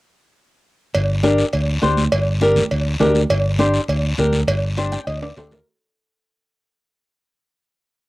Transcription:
0.94 fingered electric bass G1, cowbell, high conga, long guiro
1.23 nylon-string guitar D4 G4 A#4, high conga, short guiro
1.38 short guiro
1.53 fingered electric bass D2, cowbell, long guiro
1.68 high conga
1.82 fingered electric bass D2, nylon-string guitar D4 G4 C5, high conga, short guiro
1.97 high conga, short guiro
2.12 fingered electric bass G1, cowbell, high conga, long guiro
2.41 nylon-string guitar D4 G4 A#4, high conga, short guiro
2.56 high conga, low conga, short guiro
2.71 fingered electric bass D2, cowbell, long guiro
2.86 high conga
3.00 fingered electric bass D2, nylon-string guitar D4 G4 A#4, high conga, low conga, low timbale, short guiro
3.15 high conga, short guiro
3.30 fingered electric bass G1, cowbell, long guiro
3.59 nylon-string guitar D4 G4 C5, high conga, short guiro
3.74 short guiro
3.88 fingered electric bass D2, cowbell, long guiro
4.03 high conga
4.18 fingered electric bass D2, nylon-string guitar D4 G4 A#4, high conga, short guiro
4.33 high conga, short guiro
4.48 fingered electric bass G1, cowbell, high conga, long guiro
4.77 nylon-string guitar D4 G4 C5, high conga, short guiro
4.92 nylon-string guitar G5, high conga, short guiro
5.07 fingered electric bass D2, nylon-string guitar D#5, cowbell, long guiro
5.22 nylon-string guitar D5, high timbale
5.37 fingered electric bass D2, nylon-string guitar D4 G4 A4 C5, low timbale, short guiro
5.51 nylon-string guitar A#4, low conga, low timbale, short guiro

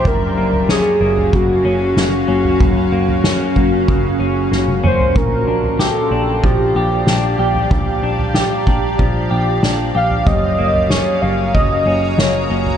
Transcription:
Already playing: clean electric guitar F3 D4 G4
0.05 picked electric bass F#1, clean electric guitar F#2, ambient pad C#4 F#4 F5, soft synth lead A#4, kick, floor tom
0.37 picked electric bass F#1, clean electric guitar A#3
0.53 floor tom
0.69 clean electric guitar C#4, soft synth lead G#4, snare
1.00 picked electric bass F#1, clean electric guitar A#3
1.17 floor tom
1.33 picked electric bass F#1, clean electric guitar C#3, soft synth lead F#4, kick, floor tom
1.65 picked electric bass F#1, clean electric guitar C#4
1.96 picked electric bass F#1, clean electric guitar A#3, snare
2.28 picked electric bass F#1, clean electric guitar C#4
2.45 floor tom
2.60 picked electric bass F#1, clean electric guitar F#2, kick, floor tom
2.92 picked electric bass F#1, clean electric guitar A#3
3.08 floor tom
3.24 clean electric guitar C#4, snare
3.56 picked electric bass F#1, clean electric guitar A#3, kick
3.88 picked electric bass F#1, clean electric guitar C#3, kick, floor tom
4.19 picked electric bass F#1, clean electric guitar C#4
4.51 picked electric bass F#1, clean electric guitar A#3, snare
4.68 high tom
4.83 picked electric bass F#1, clean electric guitar C#4, soft synth lead C5, mid tom
5.00 floor tom
5.15 picked electric bass A#1, clean electric guitar A#2, ambient pad G4 D5 F5, soft synth lead A#4, kick, floor tom
5.47 picked electric bass A#1, clean electric guitar D4
5.63 floor tom
5.79 clean electric guitar G4, soft synth lead A4, vibraphone G5, snare
6.01 vibraphone C6
6.11 picked electric bass A#1, clean electric guitar D4
6.43 picked electric bass A#1, clean electric guitar F3, soft synth lead G4, kick, floor tom
6.75 picked electric bass A#1, clean electric guitar G4
7.06 picked electric bass A#1, clean electric guitar D4, snare
7.39 picked electric bass A#1, clean electric guitar G4
7.55 floor tom
7.71 picked electric bass A#1, clean electric guitar A#2, kick, floor tom
8.03 picked electric bass A#1, clean electric guitar D4
8.19 floor tom
8.34 clean electric guitar G4, vibraphone F5, snare
8.57 vibraphone A#5
8.67 picked electric bass A#1, clean electric guitar D4, kick
8.98 picked electric bass A#1, clean electric guitar F3, kick, floor tom
9.31 picked electric bass A#1, clean electric guitar G4
9.63 picked electric bass A#1, clean electric guitar D4, snare
9.95 picked electric bass A#1, clean electric guitar G4, soft synth lead F5
10.11 floor tom
10.26 picked electric bass F#1, clean electric guitar F#2, ambient pad F#4 C#5 A#5, vibraphone C#5, soft synth lead D#5, kick, floor tom
10.58 picked electric bass F#1, clean electric guitar A#3
10.74 floor tom
10.90 clean electric guitar C#4, soft synth lead C#5, snare
11.22 picked electric bass F#1, clean electric guitar A#3, soft synth lead F5
11.54 picked electric bass F#1, clean electric guitar C#3, soft synth lead D#5, kick, floor tom
11.86 picked electric bass F#1, clean electric guitar C#4
12.18 picked electric bass F#1, clean electric guitar A#3, soft synth lead C#5, snare
12.50 picked electric bass F#1, clean electric guitar C#4
12.66 floor tom

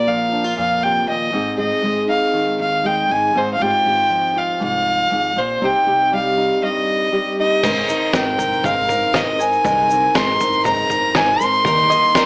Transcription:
Already playing: upright bass A#1, steel-string acoustic guitar A#2 A#3 F4 A#4
0.07 steel-string acoustic guitar F3, fiddle F5
0.32 steel-string acoustic guitar D4
0.44 steel-string acoustic guitar F4
0.57 upright bass F2, steel-string acoustic guitar A#2, fiddle F5
0.83 steel-string acoustic guitar C3, fiddle G5
1.08 upright bass D#2, steel-string acoustic guitar A#2, fiddle D#5
1.32 upright bass G#1, steel-string acoustic guitar G#2 C4 D#4 G#4
1.57 upright bass G#1, steel-string acoustic guitar G#4, fiddle D#5
1.82 upright bass G#1, steel-string acoustic guitar G#3
2.09 steel-string acoustic guitar D#4, fiddle F5
2.33 steel-string acoustic guitar D#3
2.60 upright bass D#2, fiddle F5
2.84 steel-string acoustic guitar G#3 G#4, fiddle G5
3.09 upright bass G#1, steel-string acoustic guitar D#4, fiddle G#5
3.34 upright bass G#1, steel-string acoustic guitar G#2 C4 D#4 G#4, fiddle C5
3.54 fiddle F5
3.59 upright bass G#1, steel-string acoustic guitar G#2 C4 F4 G4, fiddle G5
3.85 upright bass G#1, steel-string acoustic guitar G4
4.10 steel-string acoustic guitar F3
4.36 steel-string acoustic guitar F4, fiddle F5
4.60 upright bass C2, steel-string acoustic guitar G#2, fiddle F5
5.11 upright bass G#1, steel-string acoustic guitar G#2
5.36 upright bass A#1, steel-string acoustic guitar A#2, fiddle C5
5.62 upright bass C2, steel-string acoustic guitar C3 C4 D#4 G4, fiddle G5
5.87 upright bass C2, steel-string acoustic guitar G4
6.12 steel-string acoustic guitar G3, fiddle F5
6.37 steel-string acoustic guitar D#4
6.62 steel-string acoustic guitar G2, fiddle D#5
7.12 steel-string acoustic guitar G3 G4
7.40 steel-string acoustic guitar D#4, fiddle D#5
7.63 upright bass G#1, twelve-string acoustic guitar G#3 C4 D#4 A#4, kick, floor tom, crash, shaker
7.88 twelve-string acoustic guitar C4 D#4 A#4, shaker
8.13 upright bass G#1, twelve-string acoustic guitar G#3 C4 D#4 A#4, fiddle G5, kick, snare, shaker
8.38 twelve-string acoustic guitar C4 D#4 A#4, floor tom, shaker
8.53 shaker
8.63 upright bass G#1, twelve-string acoustic guitar G#3 C4 D#4 A#4, fiddle F5, kick, floor tom, shaker
8.88 twelve-string acoustic guitar C4 D#4 A#4, floor tom, shaker
9.13 upright bass G#2, twelve-string acoustic guitar G#3 C4 D#4 A#4, fiddle D#5, kick, snare, shaker
9.39 twelve-string acoustic guitar C4 D#4 A#4, fiddle G#5, shaker
9.53 shaker
9.64 upright bass C2, twelve-string acoustic guitar G#3 C4 D#4 A#4, kick, floor tom, shaker
9.89 twelve-string acoustic guitar C4 D#4 A#4, shaker
10.14 upright bass G#1, twelve-string acoustic guitar G#3 C4 D#4 A#4, fiddle C6, kick, snare, shaker
10.40 twelve-string acoustic guitar C4 D#4 A#4, floor tom, shaker
10.52 shaker
10.65 upright bass G#2, twelve-string acoustic guitar G#3 C4 D#4 A#4, fiddle A#5, kick, floor tom, shaker
10.90 twelve-string acoustic guitar C4 D#4 A#4, floor tom, shaker
11.15 upright bass G#1, twelve-string acoustic guitar G#3 C4 D#4 A#4, fiddle G#5, kick, snare, shaker
11.40 upright bass G#1, twelve-string acoustic guitar C4 D#4 A#4, fiddle C6, shaker
11.54 shaker
11.64 felt piano D#2 D#3 G3 A#3 D#4 A#4, upright bass D#2, twelve-string acoustic guitar D#3 G3 A#3 D#4 A#4, five-string banjo A#4, kick, floor tom, shaker
11.90 twelve-string acoustic guitar A#3 D#4 A#4, five-string banjo D#5, shaker
12.15 upright bass D#2, twelve-string acoustic guitar D#3 G3 A#3 D#4 A#4, five-string banjo A#4, kick, snare, shaker

